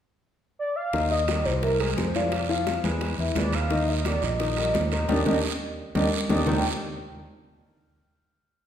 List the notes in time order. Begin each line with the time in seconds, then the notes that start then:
0.59 D5
0.76 F5
0.93 D#2 D#3 D#4 D#5, high bongo, high conga, high timbale, long guiro
1.11 D#5, high bongo, high conga
1.28 G3 G4 A#4, high bongo, high conga, high timbale, low timbale, short guiro
1.45 C2 C5, high bongo, high conga, short guiro
1.62 E3 E4 A#4 E5, high bongo, high conga, high timbale, long guiro
1.80 G#3 G#4 A#4, high conga, high timbale
1.97 F2 C5, high bongo, low bongo, high conga, low timbale, short guiro
2.15 F3 F4 D5 F5, high bongo, high conga, high timbale, short guiro
2.32 high bongo, high conga, high timbale, long guiro
2.49 F3 F4 F5, high bongo, high conga
2.67 high bongo, high conga, high timbale, low timbale, short guiro
2.84 E2 G#3 G#4 B4, high bongo, high conga, high timbale, short guiro
3.01 high bongo, high conga, high timbale, long guiro
3.18 E2 E3 E4 E5, high bongo, high conga
3.35 D#2 G#3 G#4 B4 D5, high bongo, low bongo, high conga, high timbale, low timbale, short guiro
3.52 F5, high conga, high timbale, short guiro
3.70 D#3 D#4 D#5, high bongo, high conga, high timbale, long guiro
3.88 D#5, high bongo, high conga
4.05 G3 G4 A#4 D5, high bongo, high conga, high timbale, low timbale, short guiro
4.22 A#1 D#5, high bongo, high conga, short guiro
4.39 D#3 D#4 D#5, high bongo, high conga, high timbale, long guiro
4.57 G3 G4 A#4, high conga, high timbale
4.74 D#2, high bongo, low bongo, high conga, low timbale, short guiro
4.92 D#3 D#4 D#5, high bongo, high timbale, short guiro
5.09 D#2 D4 D#4 G4 D#5, low bongo, high conga, high timbale, long guiro
5.26 D#2 D4 D#4 G4 D#5, low bongo, high conga, high timbale, long guiro
5.95 D#2 D4 D#4 G4 D#5, low bongo, high conga, high timbale, long guiro
6.29 D#2 D4 D#4 G4 D#5, low bongo, high conga, high timbale, long guiro
6.47 D#2 D#3 A#3 D4 D#4 G4 A#4 G5, low bongo, low conga, low timbale, long guiro